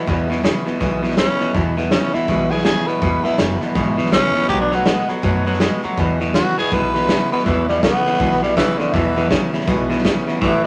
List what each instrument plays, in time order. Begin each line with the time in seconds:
0.06 steel-string acoustic guitar E2 B2 E3 G#3 B3 E4, upright bass E2, clean electric guitar E2 B2, kick, snare
0.28 clean electric guitar E2 B2, steel-string acoustic guitar E3 G#3 B3 E4, snare
0.42 clean electric guitar E2 C#3, steel-string acoustic guitar E3 G#3 B3 E4, snare, hi-hat pedal
0.66 clean electric guitar E2 B2, steel-string acoustic guitar E3 G#3 B3 E4, muted upright bass stroke, snare
0.80 upright bass B1, clean electric guitar E2 B2, steel-string acoustic guitar E2 B2 E3 G#3 B3 E4, kick, snare
1.03 clean electric guitar E2 B2, steel-string acoustic guitar E3 G#3 B3 E4, snare
1.11 snare
1.17 clean electric guitar E2 C#3, steel-string acoustic guitar E3 G#3 B3, tenor saxophone C#4, snare, hi-hat pedal
1.21 steel-string acoustic guitar E4
1.40 clean electric guitar E2 B2, steel-string acoustic guitar E3 G#3 B3 E4, muted upright bass stroke, snare
1.54 clean electric guitar E2 B2, upright bass E2, steel-string acoustic guitar E2 B2 E3 G#3 B3 E4, kick, snare
1.77 clean electric guitar E2 B2, steel-string acoustic guitar E3 G#3 B3 E4, snare
1.91 clean electric guitar E2 C#3, steel-string acoustic guitar E3 G#3 B3 E4, tenor saxophone C#4, snare, hi-hat pedal
2.13 clean electric guitar E2 B2, steel-string acoustic guitar E3 G#3 B3 E4, tenor saxophone E4, muted upright bass stroke, snare
2.28 upright bass B1, steel-string acoustic guitar E2 B2 E3 G#3 B3 E4, clean electric guitar E2 B2, kick, snare
2.49 clean electric guitar E2 B2, steel-string acoustic guitar E3 G#3 B3 E4, tenor saxophone G#4, snare
2.58 snare
2.64 clean electric guitar E2 C#3, steel-string acoustic guitar E3 G#3 E4, tenor saxophone G#4, snare, hi-hat pedal
2.86 clean electric guitar E2 B2, steel-string acoustic guitar E3 G#3 B3 E4, tenor saxophone B4, muted upright bass stroke, snare
3.01 steel-string acoustic guitar E2 B2 E3 G#3 B3 E4, clean electric guitar E2 B2, upright bass E2, kick, snare
3.23 clean electric guitar E2 B2, steel-string acoustic guitar E3 G#3 B3 E4, tenor saxophone E4, muted upright bass stroke, snare
3.38 upright bass F#1, clean electric guitar E2 C#3, steel-string acoustic guitar E3 G#3 B3 E4, snare, hi-hat pedal
3.61 clean electric guitar E2 B2, steel-string acoustic guitar E3 G#3 B3 E4, snare
3.75 upright bass G#1, steel-string acoustic guitar E2 B2 E3 G#3 B3 E4, clean electric guitar E2 B2, kick, snare
3.97 clean electric guitar E2 B2, steel-string acoustic guitar E3 G#3 B3 E4, muted upright bass stroke, snare
4.05 snare
4.11 upright bass A1, clean electric guitar E2 C#3, steel-string acoustic guitar E3 G#3 B3 E4, tenor saxophone C#4, snare, hi-hat pedal
4.34 clean electric guitar E2 B2, steel-string acoustic guitar E3 G#3 B3 E4, muted upright bass stroke, snare
4.42 snare
4.48 upright bass B1, steel-string acoustic guitar B2 D#3 A3 B3 F#4, clean electric guitar B2 F#3, tenor saxophone G4, kick, snare
4.61 tenor saxophone D4
4.71 clean electric guitar B2 F#3, steel-string acoustic guitar A3 B3 F#4, tenor saxophone B3, snare
4.85 clean electric guitar B2 G#3, steel-string acoustic guitar D#3 A3 B3 F#4, snare, hi-hat pedal
5.08 clean electric guitar B2 F#3, steel-string acoustic guitar A3 B3 F#4, muted upright bass stroke, snare
5.22 upright bass F#2, steel-string acoustic guitar B2 D#3 A3 B3 F#4, clean electric guitar B2 F#3, kick, snare
5.45 clean electric guitar B2 F#3, steel-string acoustic guitar A3 B3 F#4, snare
5.53 snare
5.60 clean electric guitar B2 G#3, steel-string acoustic guitar D#3 A3 B3 F#4, snare, hi-hat pedal
5.82 clean electric guitar B2 F#3, steel-string acoustic guitar A3 B3 F#4, muted upright bass stroke, snare
5.97 steel-string acoustic guitar E2 B2 E3 G#3 B3 E4, upright bass E2, clean electric guitar E2 B2, kick, snare
6.20 clean electric guitar E2 B2, steel-string acoustic guitar E3 G#3 B3 E4, snare
6.34 clean electric guitar E2 C#3, steel-string acoustic guitar E3 G#3 B3 E4, tenor saxophone F#4, snare, hi-hat pedal
6.57 clean electric guitar E2 B2, steel-string acoustic guitar E3 G#3 B3 E4, tenor saxophone G#4, muted upright bass stroke, snare
6.71 upright bass B1, steel-string acoustic guitar E2 B2 E3 G#3 B3 E4, clean electric guitar E2 B2, tenor saxophone B4, kick, snare
6.93 clean electric guitar E2 B2, steel-string acoustic guitar E3 G#3 B3 E4, snare
7.02 snare
7.09 clean electric guitar E2 C#3, steel-string acoustic guitar E3 G#3 E4, snare, hi-hat pedal
7.31 clean electric guitar E2 B2, steel-string acoustic guitar E3 G#3 B3 E4, tenor saxophone B4, muted upright bass stroke, snare
7.39 snare
7.46 steel-string acoustic guitar E2 B2 E3 G#3 B3 E4, upright bass E2, clean electric guitar E2 B2, tenor saxophone E3, kick, snare
7.69 clean electric guitar E2 B2, steel-string acoustic guitar E3 G#3 B3 E4, tenor saxophone G3, snare
7.82 clean electric guitar E2 C#3, steel-string acoustic guitar E3 G#3 B3 E4, tenor saxophone B3, kick, snare, hi-hat pedal
8.05 clean electric guitar E2 C#3, steel-string acoustic guitar E3 G#3 B3 E4, muted upright bass stroke, snare
8.13 snare
8.19 upright bass B1, steel-string acoustic guitar E2 B2 E3 G#3 B3 E4, clean electric guitar E2 B2, kick, snare
8.31 snare
8.41 clean electric guitar E2 B2, steel-string acoustic guitar E3 G#3 B3 E4, tenor saxophone G3, snare
8.56 clean electric guitar E2 C#3, steel-string acoustic guitar E3 G#3, tenor saxophone E3, kick, snare, hi-hat pedal
8.79 clean electric guitar E2 C#3, tenor saxophone D3, steel-string acoustic guitar E3 G#3 B3 E4, muted upright bass stroke, snare
8.93 steel-string acoustic guitar E2 B2 E3 G#3 B3 E4, clean electric guitar E2 B2, upright bass E2, tenor saxophone E3, kick, snare
9.16 clean electric guitar E2 B2, steel-string acoustic guitar E3 G#3 B3 E4, snare
9.30 clean electric guitar E2 C#3, steel-string acoustic guitar E3 G#3 B3 E4, kick, snare, hi-hat pedal
9.53 clean electric guitar E2 C#3, steel-string acoustic guitar E3 G#3 B3 E4, muted upright bass stroke, snare
9.61 snare
9.67 upright bass B1, clean electric guitar E2 B2, steel-string acoustic guitar E2 B2 E3 G#3 B3 E4, kick, snare
9.89 clean electric guitar E2 B2, steel-string acoustic guitar E3 G#3 B3 E4, snare
9.98 snare
10.04 clean electric guitar E2 C#3, steel-string acoustic guitar E3 G#3 B3 E4, kick, snare, hi-hat pedal
10.26 clean electric guitar E2 C#3, steel-string acoustic guitar E3 G#3 B3 E4, muted upright bass stroke, snare
10.41 upright bass A1, clean electric guitar A2 E3, steel-string acoustic guitar A2 E3 A3 C#4 E4, tenor saxophone E3, kick, snare
10.63 steel-string acoustic guitar E4